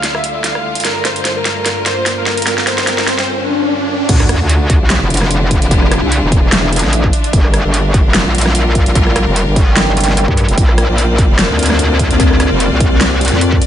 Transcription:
Already playing: D2 D3 E4 F4 D5, riser
0.03 snare, closed hi-hat
0.15 E5, cross-stick
0.24 closed hi-hat
0.44 F5, snare, closed hi-hat
0.55 cross-stick
0.75 closed hi-hat
0.80 closed hi-hat
0.85 G2 A#3 F4 A#4, snare, closed hi-hat
1.05 A#4 C5, snare, closed hi-hat
1.16 closed hi-hat
1.25 snare, closed hi-hat
1.36 A#4
1.45 snare, closed hi-hat
1.66 A#4, snare, closed hi-hat
1.86 C5, snare, closed hi-hat
2.00 G5
2.06 snare, closed hi-hat
2.17 A#4
2.26 snare
2.37 closed hi-hat
2.42 closed hi-hat
2.47 A#4, snare, closed hi-hat
2.58 snare
2.67 C5, snare, closed hi-hat
2.78 snare, closed hi-hat
2.87 A#4, snare, closed hi-hat
2.98 snare
3.08 C5, snare, closed hi-hat
3.19 snare
3.28 swell
4.09 D2 D3 D4 E4 F4, kick, closed hi-hat, crash, sub drop
4.20 cross-stick
4.29 cross-stick, closed hi-hat
4.40 D2
4.49 closed hi-hat
4.70 kick, closed hi-hat
4.81 C2
4.90 snare, clap, closed hi-hat
5.01 F1
5.10 closed hi-hat
5.14 E5, closed hi-hat
5.17 closed hi-hat
5.21 cross-stick, snare
5.31 closed hi-hat
5.51 kick, closed hi-hat
5.62 F1, closed hi-hat
5.71 kick, closed hi-hat
5.82 cross-stick
5.91 cross-stick, closed hi-hat
6.02 C2
6.12 closed hi-hat
6.23 E1
6.32 kick, closed hi-hat
6.52 snare, clap, closed hi-hat
6.73 closed hi-hat
6.76 closed hi-hat
6.79 closed hi-hat
6.84 A1, snare
6.93 closed hi-hat
7.04 kick
7.13 closed hi-hat
7.24 closed hi-hat
7.33 G1 G3 F4 A#4, kick, closed hi-hat
7.44 cross-stick
7.54 cross-stick, closed hi-hat
7.65 G1
7.74 closed hi-hat
7.94 kick, closed hi-hat
8.05 F1
8.09 A#4
8.14 snare, clap, closed hi-hat
8.26 A#1
8.35 closed hi-hat
8.38 closed hi-hat
8.41 closed hi-hat
8.46 G5, cross-stick, snare
8.55 closed hi-hat
8.75 kick, closed hi-hat
8.86 A#1, closed hi-hat
8.95 kick, closed hi-hat
9.07 cross-stick
9.16 cross-stick, closed hi-hat
9.27 F1
9.36 closed hi-hat
9.47 G1
9.56 kick, closed hi-hat
9.77 snare, clap, closed hi-hat
9.88 G1
9.97 closed hi-hat
10.01 closed hi-hat
10.04 closed hi-hat
10.08 snare
10.17 closed hi-hat
10.28 G2, kick
10.37 closed hi-hat
10.48 F1, closed hi-hat
10.58 A#1 A#3 C4 F4 C5 D5, kick, closed hi-hat
10.69 cross-stick
10.78 cross-stick, closed hi-hat
10.89 A#1
10.98 closed hi-hat
11.18 kick, closed hi-hat
11.30 F1
11.39 snare, clap, closed hi-hat
11.50 D2
11.59 closed hi-hat
11.63 closed hi-hat
11.66 closed hi-hat
11.70 cross-stick, snare
11.74 D5
11.79 closed hi-hat
11.99 kick, closed hi-hat
12.11 D2, closed hi-hat
12.20 kick, closed hi-hat
12.31 cross-stick
12.40 cross-stick, closed hi-hat
12.51 F1
12.60 closed hi-hat
12.71 C2
12.80 kick, closed hi-hat
13.01 snare, clap, closed hi-hat
13.21 closed hi-hat
13.25 closed hi-hat
13.28 closed hi-hat
13.32 F2, snare
13.41 closed hi-hat
13.52 kick
13.62 closed hi-hat

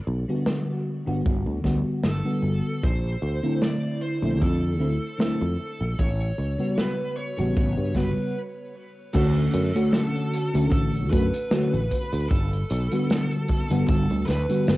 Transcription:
0.07 B1
0.28 D3 G3 B3 F#4
0.46 snare
1.06 G1 D3 G3 B3 F#4
1.26 G1, kick
1.46 D2
1.64 D2 D3 G3 B3 F#4, kick, snare
1.86 muted fretless electric bass stroke
2.04 G1 A4, snare
2.24 D3 G3 B3 F#4
2.42 G1
2.83 A#1 C5, kick
3.22 D2
3.42 D3 A3 C4 E4
3.62 D5, snare
4.02 C5
4.21 A#1 D3 A3 C4 E4
4.41 F2 A4, kick
4.79 D2 D3 A3 C4 E4
5.18 D3 A3 C4 E4 A4, snare
5.41 F2
5.80 A#1
5.99 A1 C#5, kick
6.38 C#2
6.58 C#3 G3 B3 F#4
6.78 B4, snare
7.17 C#5
7.37 A1 C#3 G3 B3 F#4
7.57 A1, kick
7.78 G2
7.94 G1 C#3 G3 B3 F#4 B4, kick, snare
8.17 muted fretless electric bass stroke
9.14 D2 D3 A3 C#4 F#4 A4, kick, closed hi-hat, crash, tambourine
9.36 closed hi-hat
9.54 F#2, closed hi-hat, tambourine
9.74 D3 A3 C#4 F#4, closed hi-hat, tambourine
9.93 snare, closed hi-hat, tambourine
10.16 closed hi-hat
10.34 closed hi-hat, tambourine
10.53 D2 D3 A3 C#4 F#4, closed hi-hat, tambourine
10.71 A1 A4, kick, closed hi-hat, tambourine
10.94 closed hi-hat
11.11 F#2 D3 A3 C#4 F#4 B4, kick, closed hi-hat, tambourine
11.34 closed hi-hat, tambourine
11.51 D3 A3 C#4 F#4, snare, closed hi-hat, tambourine
11.73 A1, closed hi-hat
11.91 kick, closed hi-hat, tambourine
12.12 D2, closed hi-hat, tambourine
12.29 G1 A4, kick, closed hi-hat, tambourine
12.53 closed hi-hat
12.70 B1, closed hi-hat, tambourine
12.91 D3 G3 B3 F#4, closed hi-hat, tambourine
13.10 snare, closed hi-hat, tambourine
13.31 closed hi-hat
13.48 kick, closed hi-hat, tambourine
13.70 G1 D3 G3 B3 F#4, closed hi-hat, tambourine
13.87 G1 A4, kick, closed hi-hat, tambourine
14.10 D2, closed hi-hat
14.26 D2 B4, snare, closed hi-hat, tambourine
14.49 D3 G3 B3 F#4, closed hi-hat, tambourine
14.67 G1, snare, closed hi-hat, tambourine

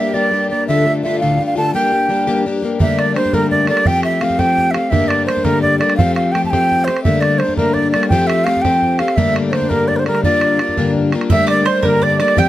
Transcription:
Already playing: G2 G3 E5
0.00 A#3 D4 G4
0.09 E5
0.14 G3 A#3 D4 G4 D5
0.31 G3 A#3 D4 G4
0.50 A#3 D4 G4 D5
0.68 D2 A2 D3 A3 D4 F4 E5
0.85 D3 A3 D4 F4
1.03 D3 A3 D4 F4 E5
1.20 A2 D3 A3 D4 F4 F5
1.24 D2
1.39 D3 A3 D4 F4
1.46 F5
1.55 D3 A3 D4 F4 A5
1.74 G3 A#3 D4 G4 G5
1.92 A#3 D4 G4
2.09 G3 A#3 D4 G4
2.27 G3 A#3 D4 G4
2.45 G3 A#3 D4 G4
2.62 A#3 D4 G4
2.79 G2 D3 G3 A3 A#3 D4 E5, bodhran
2.99 D5, bodhran
3.14 G3 A3 A#3 D4 C5, bodhran
3.25 bodhran
3.33 G2 D3 G3 A3 A#3 D4 A#4, bodhran
3.50 D5, bodhran
3.67 G3 A3 A#3 D4 D5, bodhran
3.77 bodhran
3.86 F3 A3 C4 G4 G5, bodhran
4.03 E5, bodhran
4.21 F3 A3 C4 G4 F5, bodhran
4.30 bodhran
4.39 F3 A3 C4 G4 G5, bodhran
4.58 bodhran
4.71 G4 E5 F5, bodhran
4.76 A3 C4
4.90 G2 D3 G3 A3 A#3 D4 E5, bodhran
5.08 D5, bodhran
5.26 G3 A3 A#3 D4 C5, bodhran
5.37 bodhran
5.44 G2 D3 G3 A3 A#3 D4 A#4, bodhran
5.62 D5, bodhran
5.79 A3 A#3 D4 D5, bodhran
5.83 G3
5.90 bodhran
5.97 F3 A3 C4 G4 F5, bodhran
6.15 F5, bodhran
6.32 F3 A3 C4 G5, bodhran
6.37 G4
6.44 A5, bodhran
6.51 F3 A3 C4 G4 G5, bodhran
6.71 bodhran
6.84 G4 C5, bodhran
6.89 A3 C4
6.97 bodhran
7.04 G2 D3 G3 A3 A#3 D4 E5, bodhran
7.21 D5, bodhran
7.38 G3 C5, bodhran
7.43 A3 A#3 D4
7.48 bodhran
7.57 G2 D3 G3 A3 A#3 D4 A#4, bodhran
7.74 D5, bodhran
7.91 A3 D4 D5, bodhran
7.96 G3 A#3
8.03 bodhran
8.08 F3 C4 G5, bodhran
8.13 A3 G4
8.27 E5, bodhran
8.44 F3 A3 C4 F5, bodhran
8.49 G4
8.57 bodhran
8.62 A3 G4 G5, bodhran
8.66 F3 C4
8.82 bodhran
8.99 A3 C4 G4 F5, bodhran
9.08 bodhran
9.16 G2 D3 G3 A3 A#3 D4 E5, bodhran
9.36 bodhran
9.49 G3 C5 D5
9.53 A3 A#3 D4, bodhran
9.62 bodhran
9.69 G2 D3 G3 A3 A#3 D4 A#4, bodhran
9.88 D5, bodhran
9.96 A#4 C5
10.06 G3 A3 A#3 D4 A#4, bodhran
10.15 bodhran
10.24 G2 D3 G3 A#3 D4 F4 D5, bodhran
10.41 bodhran
10.59 G3 A#3 D4 F4, bodhran
10.69 bodhran
10.77 G2 D3 G3 A#3 D4 F4, bodhran
10.95 bodhran
11.12 G3 A#3 D4 F4, bodhran
11.21 bodhran
11.30 G2 D3 G3 A3 A#3 D4 E5, bodhran
11.47 D5, bodhran
11.65 G3 A3 A#3 D4 C5, bodhran
11.82 G2 D3 G3 A3 A#3 D4 A#4, bodhran
12.02 D5, bodhran
12.20 G3 A3 A#3 D4 D5, bodhran
12.28 bodhran
12.36 F3 G3 A3 C4 G4 G5, bodhran

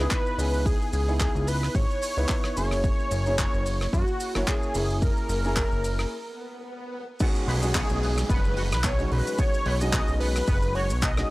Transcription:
0.00 B3 D#4 E4 B4, maracas
0.11 B4, kick, clap, maracas
0.26 maracas
0.38 C#2 B3 D#4 E4 G#4 B4, open hi-hat, maracas
0.54 maracas
0.66 G#4, kick, maracas
0.82 maracas
0.93 C#2 G#4, open hi-hat, maracas
1.08 B3 D#4 E4 G#4, maracas
1.19 B3 D#4 E4, kick, clap, maracas
1.35 C#2, maracas
1.47 B4, open hi-hat, maracas
1.63 cross-stick, maracas
1.75 G#1 C#5, kick, maracas
1.91 maracas
2.02 open hi-hat, maracas
2.17 C#2 B3 D#4 E4 B4, maracas
2.29 kick, clap, maracas
2.44 cross-stick, maracas
2.56 F#1 A#3 C#4 E4 G#4 C#5, open hi-hat, maracas
2.71 cross-stick, open hi-hat, maracas
2.84 kick, maracas
3.00 maracas
3.11 F#1, open hi-hat, maracas
3.26 A#3 C#4 E4 G#4, maracas
3.38 kick, clap, maracas
3.54 F#1, maracas
3.66 open hi-hat, maracas
3.81 cross-stick, maracas
3.93 F#2 F#4, kick, maracas
4.08 maracas
4.20 open hi-hat, maracas
4.35 F#1 A#3 C#4 E4 C#5, cross-stick, maracas
4.47 G#4, kick, clap, maracas
4.63 maracas
4.74 F#1 A#3 C#4 E4 G#4, open hi-hat, maracas
4.90 maracas
5.02 A#4, kick, maracas
5.17 maracas
5.29 F#1, open hi-hat, maracas
5.44 A#3 C#4 E4 G#4, maracas
5.56 kick, clap, maracas
5.72 F#1, maracas
5.84 open hi-hat, maracas
5.99 cross-stick, open hi-hat, maracas
6.11 swell
7.20 G#3 B3 C#4 D#4 F#4, kick, crash, downlifter, maracas
7.35 maracas
7.47 B1 G#4 B4, open hi-hat
7.62 G#3 C#4 D#4 F#4, maracas
7.74 G#3 B3 C#4 D#4 F#4, kick, clap, maracas
7.89 B1, maracas
8.02 B3, open hi-hat
8.18 cross-stick, maracas
8.29 F#1 B3 B4, kick, maracas
8.45 maracas
8.57 F#4 B4, open hi-hat
8.72 B1, cross-stick, maracas
8.84 B3 C#5, kick, clap, maracas
8.99 G#3 C#4 D#4 F#4, maracas
9.11 B1 B2 B4, open hi-hat
9.27 maracas
9.38 B3 C#5, kick, maracas
9.54 maracas
9.66 B1 B4, open hi-hat
9.81 G#3 C#4 D#4 F#4 D#5, maracas
9.93 G#3 B3 C#4 D#4, kick, clap, maracas
10.08 B1, maracas
10.20 B3 B4, open hi-hat
10.36 cross-stick, maracas
10.47 F#1 B3, kick, maracas
10.62 maracas
10.75 F#4 C#5, open hi-hat
10.90 B1, maracas
11.02 B3 D#5, kick, clap, maracas
11.17 G#3 C#4 D#4 F#4, cross-stick, maracas

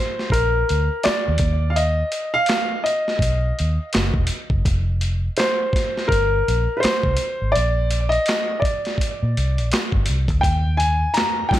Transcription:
Already playing: C5
0.19 snare
0.30 A#1 A#4, kick, closed hi-hat
0.69 D2, closed hi-hat
1.03 D5, muted fingered electric bass stroke, snare, clap, closed hi-hat
1.28 D#2
1.38 D#2, kick, closed hi-hat
1.70 F5
1.76 D#5, closed hi-hat
2.12 closed hi-hat
2.34 F5
2.46 snare, clap, closed hi-hat
2.84 D#5, closed hi-hat
3.08 snare
3.19 B1, kick, closed hi-hat
3.59 D#2, closed hi-hat
3.93 F#1, snare, clap, closed hi-hat
4.14 E1, kick
4.27 closed hi-hat
4.50 F#1, kick
4.65 F1, kick, closed hi-hat
5.01 closed hi-hat
5.37 C5, snare, clap, closed hi-hat
5.73 kick, snare, closed hi-hat
5.97 snare
6.08 G1 A#4, kick
6.12 closed hi-hat
6.48 A#1, closed hi-hat
6.77 B4 C5
6.83 muted fingered electric bass stroke, snare, clap, closed hi-hat
7.03 C2, kick
7.17 closed hi-hat
7.42 G#1
7.52 D5, closed hi-hat
7.56 A#1
7.91 closed hi-hat
8.09 D#5, closed hi-hat
8.26 snare, clap, closed hi-hat
8.60 D5, kick
8.65 closed hi-hat
8.85 snare, closed hi-hat
8.98 kick, closed hi-hat
9.23 A#2
9.37 C2, closed hi-hat
9.58 A#1, closed hi-hat
9.72 snare, clap, closed hi-hat
9.92 G1, kick
10.06 C2, closed hi-hat
10.28 D2, kick, closed hi-hat
10.41 D#2 G5, kick, closed hi-hat
10.77 G#5, closed hi-hat
11.14 A#5, snare, clap, closed hi-hat
11.49 G3 G5, kick
11.53 A#3 D4 D#4 F4, snare, closed hi-hat

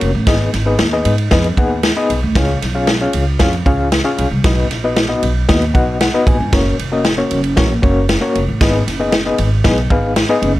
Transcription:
Already playing: C#4 F#4 A#4 C#5
0.01 F1, ride
0.15 A1
0.27 G#1 B3 D#4 G#4 B4 D#5, kick, snare, ride
0.53 G#1, snare, ride
0.66 B3 D#4 G#4 B4 D#5
0.79 D#2, snare, ride
0.93 B3 D#4 G#4 B4 D#5
1.05 G#2, ride
1.18 ride
1.31 F2 B3 D#4 G#4 B4 D#5, kick, snare, ride
1.44 ride
1.57 D#2 B3 D#4 G#4 B4 F#5, kick, ride
1.83 snare, ride
1.96 B3 D#4 G#4 B4 D#5
2.10 B1, ride
2.23 D2
2.35 C#2 C#4 F4 G#4 C#5 F5, kick, snare, ride
2.62 B1, snare, ride
2.75 C#4 F4 G#4 C#5 F5
2.87 snare, ride
3.01 C#4 F4 G#4 C#5 F5
3.13 C#2, ride
3.39 F2 C#4 F4 G#4 C#5 F5, kick, snare, ride
3.53 ride
3.66 C#2 C#4 F4 G#4 C#5 F5, kick, ride
3.92 snare, ride
4.04 C#4 F4 G#4 C#5 F5
4.18 B1, ride
4.31 C2
4.44 B1 B3 D#4 F#4 B4 D#5, kick, snare, ride
4.70 A#1, snare, ride
4.84 B3 D#4 F#4 B4 D#5
4.96 snare, ride
5.09 B3 D#4 F#4 B4 D#5
5.23 B1, ride
5.49 D#2 B3 D#4 F#4 B4 D#5, kick, snare, ride
5.62 ride
5.74 B1 B3 D#4 F#4 B4 D#5 F#5, kick, ride
6.01 F#5, snare, ride
6.14 B3 D#4 F#4 B4 D#5
6.27 A#1 G#5, kick, ride
6.40 G1
6.53 F#1 A#3 C#4 F#4 A#4 C#5, kick, snare, ride
6.79 F1, ride
6.92 A#3 C#4 F#4 A#4 D#5
7.05 snare, ride
7.18 A#3 C#4 F#4 A#4 C#5
7.31 F#1, ride
7.44 ride
7.56 A#1 A#3 C#4 F#4 A#4 C#5, kick, snare, ride
7.83 F#1 A#3 C#4 F#4 A#4 C#5, kick, ride
8.09 snare, ride
8.21 A#3 C#4 F#4 A#4 C#5
8.35 F1, ride
8.48 A1
8.61 G#1 B3 D#4 G#4 B4 D#5, kick, snare, ride
8.87 F#1, snare, ride
8.99 B3 D#4 G#4 B4 D#5
9.12 snare, ride
9.26 B3 D#4 G#4 B4 D#5
9.38 G#1, ride
9.64 B1 B3 D#4 G#4 B4 D#5, kick, snare, ride
9.78 ride
9.90 G#1 B3 D#4 G#4 B4 F5, kick, ride
10.16 snare, ride
10.29 B3 D#4 G#4 B4 D#5
10.42 F#1, ride
10.56 D2

